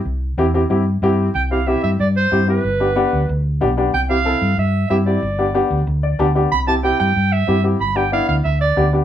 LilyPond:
<<
  \new Staff \with { instrumentName = "Clarinet" } { \time 4/4 \key c \major \tempo 4 = 186 r1 | g''8 f''8 e''8 e''8 d''8 c''4 b'8~ | b'2~ b'8 r4. | g''8 f''4. e''4 e''8 d''8~ |
d''4. r2 r8 | b''8 a''8 g''8 g''4 e''4 r8 | b''8 g''8 f''8 f''8 e''8 d''4 r8 | }
  \new Staff \with { instrumentName = "Upright piano" } { \time 4/4 \key c \major << { r1 | r1 | r1 | r1 |
r2 r8 d''8 a''4 | r1 | r1 | } \\ { r4 <c' e' g'>8 <c' e' g'>8 <c' e' g'>8 r8 <c' e' g'>8 r8 | r8 <c' e' g'>8 <c' e' g'>8 r4. <c' e' g'>8 <c' e' g'>8 | r8 <b d' g'>8 <b d' g'>8 r4. <b d' g'>8 <b d' g'>8 | r8 <c' e' g'>8 <c' e' a'>8 r4. <c' e' g'>8 <c' e' g'>8 |
r8 <b d' g'>8 <b d' g'>8 r4. <b d' g'>8 <b d' g'>8 | r8 <c' e' g'>8 <c' e' g'>8 r4. <c' e' g'>8 <c' e' g'>8 | r8 <b d' g'>8 <b d' e'>8 r4. <b d' g'>8 <b d' g'>8 | } >> }
  \new Staff \with { instrumentName = "Fingered electric bass" } { \clef bass \time 4/4 \key c \major c,4 e,4 g,4 g,4 | c,4. g,8 g,4 g,4 | g,,4. d,8 d,4 b,,4 | c,4. g,8 g,4 g,4 |
g,,4. d,8 d,4 d,4 | c,4. g,8 g,4 g,4 | g,,4. d,8 d,4 d,4 | }
>>